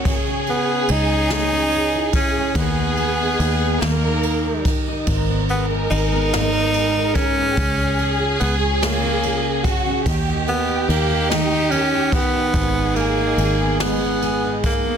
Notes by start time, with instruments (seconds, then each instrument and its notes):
Already playing: steel-string acoustic guitar A#3 C#4 F#4 A#4
0.05 fingered electric bass C#2, steel-string acoustic guitar C#3, violin section G#4, kick, ride
0.27 steel-string acoustic guitar C#4
0.46 tenor saxophone B3, steel-string acoustic guitar G#4, ride
0.88 fingered electric bass C#2, tenor saxophone D#4, steel-string acoustic guitar G#4, ride
1.10 steel-string acoustic guitar C#4
1.30 steel-string acoustic guitar C#3, snare, ride
1.52 steel-string acoustic guitar C#4
1.72 steel-string acoustic guitar G#4, ride
1.95 steel-string acoustic guitar E4
2.13 tenor saxophone C#4, steel-string acoustic guitar G#4, kick, ride
2.37 steel-string acoustic guitar C#4
2.55 fingered electric bass D#2, steel-string acoustic guitar D#3, tenor saxophone B3, violin section G#4, kick, ride
2.78 steel-string acoustic guitar B3
2.97 steel-string acoustic guitar G#4, ride
3.21 steel-string acoustic guitar D#4
3.40 fingered electric bass D#2, steel-string acoustic guitar G#4, ride
3.62 steel-string acoustic guitar B3
3.80 fingered electric bass D#2, steel-string acoustic guitar D#3, tenor saxophone A#3, violin section A#4, snare, ride
4.02 steel-string acoustic guitar D#4
4.23 steel-string acoustic guitar A#4, ride
4.45 steel-string acoustic guitar G4
4.65 steel-string acoustic guitar A#4, kick, ride
4.88 steel-string acoustic guitar D#4
5.07 fingered electric bass G#1, steel-string acoustic guitar G#2, violin section A#4, kick, ride
5.29 steel-string acoustic guitar B3
5.49 tenor saxophone B3, steel-string acoustic guitar G#4, ride
5.71 steel-string acoustic guitar D#4
5.90 fingered electric bass G#1, tenor saxophone D#4, steel-string acoustic guitar G#4, ride
6.12 steel-string acoustic guitar B3
6.33 steel-string acoustic guitar G#2, snare, ride
6.55 steel-string acoustic guitar B3
6.74 steel-string acoustic guitar G#4, ride
6.97 steel-string acoustic guitar D#4
7.14 tenor saxophone C#4, steel-string acoustic guitar G#4, kick, ride
7.37 steel-string acoustic guitar B3
7.50 violin section G4
7.57 fingered electric bass C#2, steel-string acoustic guitar C#3, violin section G#4, kick, ride
7.78 steel-string acoustic guitar C#4
7.98 steel-string acoustic guitar G#4, ride
8.19 steel-string acoustic guitar F4
8.39 fingered electric bass C#2, tenor saxophone B3, steel-string acoustic guitar G#4, ride
8.60 steel-string acoustic guitar C#4
8.82 steel-string acoustic guitar C#3, tenor saxophone A#3, snare, ride
9.03 steel-string acoustic guitar C#4
9.23 steel-string acoustic guitar G#4, ride
9.64 violin section F#4, steel-string acoustic guitar G#4, kick, ride
9.87 steel-string acoustic guitar C#4
10.06 fingered electric bass D#2, steel-string acoustic guitar D#3, violin section G4, kick, ride
10.26 steel-string acoustic guitar D#4
10.47 tenor saxophone B3, steel-string acoustic guitar A#4, ride
10.68 steel-string acoustic guitar G4
10.89 fingered electric bass D#2, tenor saxophone A#3, steel-string acoustic guitar A#4, ride
11.10 steel-string acoustic guitar D#4
11.30 steel-string acoustic guitar D#3, tenor saxophone D#4, snare, ride
11.51 steel-string acoustic guitar D#4
11.70 tenor saxophone C#4, steel-string acoustic guitar A#4, ride
11.93 steel-string acoustic guitar G4
12.12 tenor saxophone B3, steel-string acoustic guitar A#4, kick, ride
12.34 steel-string acoustic guitar D#4
12.53 fingered electric bass G#1, steel-string acoustic guitar G#2, violin section G#4, kick, ride
12.95 tenor saxophone A#3, steel-string acoustic guitar G#4, ride
13.18 steel-string acoustic guitar D#4
13.38 fingered electric bass G#1, steel-string acoustic guitar G#4, ride
13.59 steel-string acoustic guitar B3
13.80 steel-string acoustic guitar G#2, tenor saxophone B3, snare, ride
14.01 steel-string acoustic guitar B3
14.22 steel-string acoustic guitar G#4, ride
14.43 steel-string acoustic guitar D#4
14.63 tenor saxophone A#3, steel-string acoustic guitar G#4, kick, ride
14.85 steel-string acoustic guitar B3